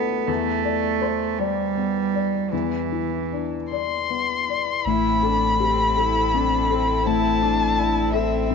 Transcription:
Already playing: felt piano D2 D4 E4 F4 A4, cello B3
0.27 felt piano E2, cello A3
0.64 felt piano D5
1.02 felt piano C5
1.38 cello G3, felt piano D5
1.77 felt piano B3
2.14 felt piano D5
2.52 felt piano E2, cello E3
2.92 felt piano E4
3.32 felt piano D4
3.71 felt piano D5, violin C6
4.10 felt piano B3
4.49 felt piano D5
4.84 sub bass A1, felt piano A2, string section C4 E4 A4, cello E4, violin B5
5.23 cello D4, felt piano A4
5.60 cello C4, felt piano G4
5.97 cello E4, felt piano A4
6.34 felt piano C4, cello D4
6.70 cello C4, felt piano A4
7.06 felt piano A2, cello E4, violin A5
7.42 cello D4, felt piano E4
7.78 felt piano D4, cello E4
8.12 cello C4, felt piano A4, violin E5
8.50 felt piano C4

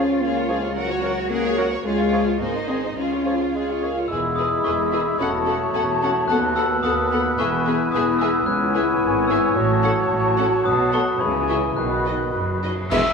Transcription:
Already playing: double bass section C#2, french horn section C#4, cello section F4
0.08 viola section F4, violin section F4 C#5
0.22 french horn section A#3, viola section C#4, violin section G#4 F5
0.35 viola section F4, violin section F4 C#5
0.48 bassoon F3, french horn section G#3, viola section C#4, violin section G#4 F5, clarinet G#4, oboe C#5
0.62 viola section F4, violin section F4 C#5
0.69 french horn section G#3
0.75 french horn section F#3, viola section C#4, cello section F#4, violin section A#4 F#5
0.89 viola section F#4, violin section C#5
1.02 bassoon F#3, viola section C#4, clarinet A#4, violin section A#4 F#5, oboe C#5
1.16 viola section F#4, violin section C#5
1.30 french horn section A#3, viola section C#4, cello section G#4, violin section A#4 F#5
1.44 viola section F#4, violin section C#5
1.57 bassoon F#3, viola section C#4, cello section F#4, clarinet A#4, violin section A#4 F#5, oboe C#5
1.72 viola section F#4, violin section C#5
1.84 double bass section C#2, french horn section G#3, viola section C#4, cello section F4, violin section G#4 F5
1.99 violin section F4 C#5, viola section F4
2.12 bassoon F3, viola section C#4, clarinet G#4, violin section G#4 F5, oboe C#5
2.25 violin section F4 C#5, viola section F4
2.40 double bass section G#1, french horn section A#3, viola section C4, cello section D#4, violin section G#4 C5
2.55 viola section D#4, violin section C5 D#5
2.67 bassoon D#3, french horn section C4, viola section C4, violin section G#4 C5, clarinet G#4, oboe D#5
2.83 viola section D#4, violin section C5 D#5
2.97 double bass section C#2, french horn section C#4, viola section C#4, cello section F4, violin section G#4 F5
3.10 viola section F4, violin section F4 C#5
3.25 bassoon F3, viola section C#4, clarinet G#4, violin section G#4 F5, oboe C#5
3.40 violin section F4 C#5, viola section F4
3.54 bassoon G#3, viola section C#4, violin section G#4 F5
3.69 viola section F4, violin section F4 C#5
3.81 bassoon A#3, viola section C#4, clarinet G#4, violin section G#4 F5, oboe C#5
3.96 viola section F4, violin section F4 C#5
4.08 double bass section E1, cello section E2, bassoon G#3, clarinet E4, viola section E4, violin section G#4 B4, oboe E5, flute section B5, glockenspiel E6
4.36 french horn section B3 G#4, viola section E4, violin section G#4 B4, glockenspiel D#6
4.64 double bass section E1, cello section E2, viola section E4, violin section G#4 B4, glockenspiel C#6
4.91 french horn section B3 G#4, viola section E4, violin section G#4 B4
5.19 double bass section E1, cello section E2, bassoon A3, viola section C#4, clarinet F#4, violin section A4 F#5, oboe C#5, flute section A5, glockenspiel B5
5.45 french horn section C#4 F#4, viola section C#4, violin section A4 F#5
5.74 double bass section E1, cello section E2, viola section C#4, violin section A4 F#5, glockenspiel A5
6.02 french horn section C#4 F#4, viola section C#4, violin section A4 F#5
6.28 double bass section D#2, cello section D#2, bassoon B3, viola section B3, violin section A4 F#5, oboe B4, glockenspiel F#6
6.56 viola section B3, french horn section B3 A4, violin section A4 F#5, glockenspiel E6
6.83 double bass section D#2, cello section D#2, viola section B3, violin section A4 F#5, glockenspiel D#6
7.11 viola section B3, french horn section B3 A4, violin section A4 F#5
7.38 double bass section E1, cello section E2, viola section B3, clarinet E4, violin section G#4 E5, flute section G#5, glockenspiel C#6
7.66 viola section B3, french horn section B3 G#4, violin section G#4 E5
7.92 double bass section E1, cello section E2, viola section B3, violin section G#4 E5, glockenspiel D#6
8.19 viola section B3, french horn section B3 G#4, violin section G#4 E5, glockenspiel E6
8.46 double bass section C#2, cello section C#2, bassoon B3, clarinet E4, oboe C#5, flute section G#5, glockenspiel F#6
8.74 french horn section B3 E4, viola section B3, violin section G#4 E5
9.01 double bass section G#1, cello section G#2
9.27 french horn section B3 E4, viola section B3, violin section G#4 E5, glockenspiel E6
9.56 double bass section A1, cello section A2, bassoon F#3, clarinet F#4, flute section A5
9.82 french horn section C#4 F#4, viola section C#4, violin section A4 F#5
10.10 double bass section A1, cello section A2
10.37 viola section C#4, french horn section C#4 F#4, violin section A4 F#5
10.65 double bass section B1, cello section B2, oboe B4, glockenspiel D#6
10.92 french horn section A3 F#4, viola section B3, violin section A4 F#5, glockenspiel C#6
11.20 double bass section C#2, cello section C#3, bassoon E3, clarinet G#4, oboe C#5, flute section G#5, glockenspiel B5
11.48 french horn section G#3 E4, viola section E4, violin section G#4 E5, glockenspiel C#6
11.76 double bass section B1, cello section B2, bassoon D#3, clarinet F#4, oboe B4, flute section B5, glockenspiel F#6
12.05 french horn section F#3 D#4, viola section F#4, violin section B4 D#5
12.33 double bass section F#1, cello section F#2
12.62 french horn section F#3 D#4, viola section F#4, violin section B4 D#5
12.90 tuba E1, double bass section E1, cello section E2, viola section B3 G#4, violin section B4 E5, clarinet E5, glockenspiel E6, concert bass drum, crash

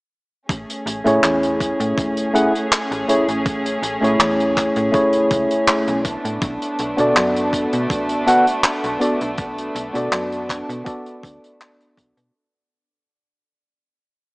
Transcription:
0.48 fm bass A1, string section A3 C#4 G#4, kick, closed hi-hat
0.70 closed hi-hat
0.86 fm bass A1, closed hi-hat
1.04 fm bass A2, tine electric piano A3 C#4 E4 G#4 C#5, closed hi-hat
1.23 fm bass E2, clap, closed hi-hat
1.43 closed hi-hat
1.60 kick, closed hi-hat
1.80 fm bass A2, closed hi-hat
1.98 fm bass E1, kick, closed hi-hat
2.17 closed hi-hat
2.34 tine electric piano A3 C#4 E4 G#4 F#5, closed hi-hat
2.55 closed hi-hat
2.72 clap, closed hi-hat
2.91 fm bass A1, closed hi-hat
3.08 tine electric piano A3 C#4 E4 G#4 C#5, closed hi-hat
3.28 fm bass A1, closed hi-hat
3.46 kick, closed hi-hat
3.66 closed hi-hat
3.82 fm bass A1, closed hi-hat
4.01 fm bass A2, tine electric piano A3 C#4 E4 G#4 C#5, closed hi-hat
4.20 fm bass E2, clap, closed hi-hat
4.40 closed hi-hat
4.57 kick, clap, closed hi-hat
4.76 fm bass A2, closed hi-hat
4.92 tine electric piano A3 C#4 E4 G#4 C#5, kick, closed hi-hat
5.13 closed hi-hat
5.31 fm bass C#2, kick, closed hi-hat
5.51 closed hi-hat
5.67 clap, closed hi-hat
5.88 fm bass B1, closed hi-hat
6.04 string section A3 B3 D4, kick, closed hi-hat
6.25 fm bass A2, closed hi-hat
6.42 fm bass B1, kick, closed hi-hat
6.62 closed hi-hat
6.79 fm bass B1, closed hi-hat
6.97 fm bass B2, tine electric piano B3 D4 F#4 A4 D5, closed hi-hat
7.16 fm bass F#2, clap, closed hi-hat
7.36 closed hi-hat
7.53 kick, closed hi-hat
7.73 fm bass B2, closed hi-hat
7.90 fm bass A1, kick, closed hi-hat
8.09 closed hi-hat
8.26 tine electric piano B3 D4 F#4 A4 F#5, closed hi-hat
8.47 closed hi-hat
8.64 clap, closed hi-hat
8.84 fm bass B1, closed hi-hat
9.00 tine electric piano B3 D4 F#4 A4 D5, closed hi-hat
9.21 fm bass B1, closed hi-hat
9.38 kick, closed hi-hat
9.58 closed hi-hat
9.75 fm bass B1, closed hi-hat
9.93 fm bass B2, tine electric piano B3 D4 F#4 A4 D5, closed hi-hat
10.12 fm bass F#2, clap, closed hi-hat
10.32 closed hi-hat
10.49 kick, clap, closed hi-hat
10.69 fm bass B2, closed hi-hat
10.84 tine electric piano B3 D4 F#4 A4 D5, kick, closed hi-hat
11.06 closed hi-hat
11.23 fm bass D2, kick, closed hi-hat
11.44 closed hi-hat
11.61 clap, closed hi-hat
11.81 closed hi-hat
11.97 fm bass B1, kick, closed hi-hat
12.17 fm bass B2, closed hi-hat

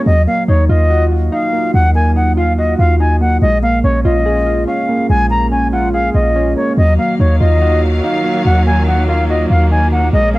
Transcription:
0.06 808-style bass D#2, synth keys F#3, flute D#5
0.27 synth keys A#3, flute F5
0.48 808-style bass D#2, synth keys D#4, flute C#5
0.69 808-style bass D#2, synth keys F4, flute D#5
0.90 synth keys F#4
1.11 synth keys F4
1.32 synth keys D#4, flute F5
1.53 synth keys A#3
1.74 808-style bass D#2, synth keys F#3, flute F#5
1.95 synth keys A#3, flute G#5
2.16 synth keys D#4, flute F#5
2.37 synth keys F4, flute F5
2.58 synth keys F#4, flute D#5
2.79 808-style bass D#2, synth keys F4, flute F5
3.00 synth keys D#4, flute G#5
3.21 synth keys A#3, flute F#5
3.42 808-style bass A#1, synth keys G#3, flute D#5
3.62 synth keys A#3, flute F5
3.84 808-style bass A#1, synth keys C#4, flute C#5
4.05 808-style bass A#1, synth keys F4, flute D#5
4.26 synth keys G#4
4.46 synth keys F4
4.67 synth keys C#4, flute F5
4.89 synth keys A#3
5.10 808-style bass A#1, synth keys G#3, flute G#5
5.30 synth keys A#3, flute A#5
5.52 synth keys C#4, flute G#5
5.73 synth keys F4, flute F#5
5.93 synth keys G#4, flute F5
6.14 808-style bass A#1, synth keys F4, flute D#5
6.36 synth keys C#4
6.56 synth keys A#3, flute C#5
6.77 808-style bass D#2, string section D#3 F#3 A#3 F5, synth keys F#3, flute D#5
6.98 synth keys A#3, flute F5
7.19 808-style bass D#2, synth keys D#4, flute C#5
7.40 808-style bass D#2, synth keys F4, flute D#5
7.62 synth keys F#4
7.83 synth keys F4
8.04 synth keys D#4, flute F5
8.24 synth keys A#3
8.45 808-style bass D#2, synth keys F#3, flute F#5
8.66 synth keys A#3, flute G#5
8.87 synth keys D#4, flute F#5
9.08 synth keys F4, flute F5
9.29 synth keys F#4, flute D#5
9.50 808-style bass D#2, synth keys F4, flute F5
9.71 synth keys D#4, flute G#5
9.92 synth keys A#3, flute F#5
10.13 808-style bass A#1, string section G#3 C#4, synth keys G#3, flute D#5
10.34 synth keys A#3, flute F5

